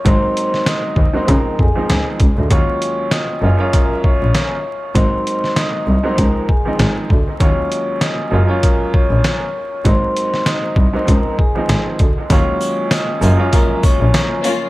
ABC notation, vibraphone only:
X:1
M:4/4
L:1/16
Q:"Swing 16ths" 1/4=98
K:Gblyd
V:1 name="Vibraphone"
[cc']4 [ee']3 [cc'] [Bb]2 [Aa]3 z3 | [dd']4 [ee']3 [dd'] [Bb]2 [dd']6 | [cc']4 [ee']3 [cc'] [Bb]2 [Aa]3 z3 | [dd']4 [ee']3 [dd'] [Bb]2 [dd']6 |
[cc']4 [ee']3 [cc'] [Bb]2 [Aa]3 z3 | [dd']4 [ee']3 [dd'] [Bb]2 [dd']6 |]